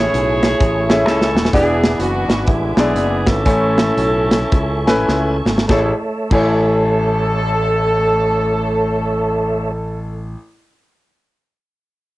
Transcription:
Already playing: grand piano A2 A3 C#4 E4 G#4 C#5, tonewheel organ A3 E5 G#5 C#6, saxophone section E4 G#4 C#5
0.14 fingered electric bass B1, closed hi-hat
0.43 snare, closed hi-hat
0.60 fingered electric bass A1, kick, closed hi-hat
0.89 grand piano A3 C#4 E4 G#4 E5, snare, closed hi-hat
1.05 fingered electric bass C#2, saxophone section C#4 E4 A4, snare
1.21 snare
1.35 fingered electric bass D#1, snare
1.45 snare
1.53 fingered electric bass E1, grand piano E3 B3 D4 E4 G#4 D5, saxophone section B3 D4 G#4, tonewheel organ B4 E5 G#5 D6, kick, closed hi-hat
1.84 snare, closed hi-hat
1.99 fingered electric bass F#1, saxophone section B3 D4 F#4, closed hi-hat
2.28 fingered electric bass G#1, snare, closed hi-hat
2.45 fingered electric bass A1, saxophone section G#3 B3 E4, kick, closed hi-hat
2.76 fingered electric bass B1, saxophone section B3 D4 G#4, grand piano B3 D4 E4 G#4 D5, snare, closed hi-hat
2.95 fingered electric bass F#1, closed hi-hat
3.26 fingered electric bass G#1, saxophone section C#4 E4 A4, kick, snare, closed hi-hat
3.45 fingered electric bass A1, grand piano A2 A3 C#4 E4 C#5 G#5, tonewheel organ A4 C#6, kick, closed hi-hat
3.78 snare, closed hi-hat
3.97 fingered electric bass B1, closed hi-hat
4.31 snare, closed hi-hat
4.52 fingered electric bass C#2, kick, closed hi-hat
4.86 fingered electric bass A1, grand piano A3 C#4 E4 B4 G#5, snare, closed hi-hat
5.08 fingered electric bass C#2, snare
5.45 fingered electric bass G#1, snare
5.58 snare
5.67 fingered electric bass A1, grand piano A1 A3 E4 G#4, tonewheel organ A3 A4 C#5 E5, saxophone section A4, kick, snare
5.71 grand piano C#5
6.30 fingered electric bass A1, grand piano A1 A3 E4 C#5 G#5, saxophone section A4, kick, crash

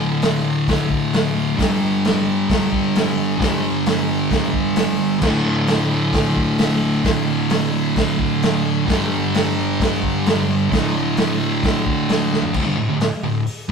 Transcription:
Already playing: distorted electric guitar D2 A2 D3
0.22 snare, open hi-hat
0.68 kick, snare, open hi-hat
0.90 kick
1.13 snare, open hi-hat
1.57 distorted electric guitar G2 D3, kick, snare, open hi-hat
1.62 distorted electric guitar G3
2.05 snare, open hi-hat
2.49 kick, snare, open hi-hat
2.72 kick
2.95 snare, open hi-hat
3.37 distorted electric guitar G2 D3, kick, open hi-hat
3.42 distorted electric guitar G3, snare
3.86 snare, open hi-hat
4.31 kick, snare, open hi-hat
4.53 kick
4.76 snare, open hi-hat
5.20 distorted electric guitar D2 A2, kick, snare, crash
5.25 distorted electric guitar D3
5.67 snare, open hi-hat
6.13 kick, snare, open hi-hat
6.36 kick
6.58 snare, open hi-hat
7.03 distorted electric guitar D2 A2, kick, snare, open hi-hat
7.08 distorted electric guitar D3
7.50 snare, open hi-hat
7.96 kick, snare, open hi-hat
8.19 kick
8.42 snare, open hi-hat
8.86 distorted electric guitar G2 D3, kick, snare, open hi-hat
8.92 distorted electric guitar G3
9.34 snare, open hi-hat
9.80 kick, snare, open hi-hat
10.03 kick
10.26 snare, open hi-hat
10.70 distorted electric guitar D2 A2, kick, snare, open hi-hat
10.75 distorted electric guitar D3
11.17 snare, open hi-hat
11.63 kick, snare, open hi-hat
11.86 kick
12.09 snare, open hi-hat
12.33 snare
12.42 floor tom
12.54 distorted electric guitar D2 A2, kick, crash
12.65 distorted electric guitar G2 D3
12.77 distorted electric guitar D2 A2
12.89 distorted electric guitar D2 A2
13.00 snare, open hi-hat
13.23 distorted electric guitar D2 A2
13.46 open hi-hat

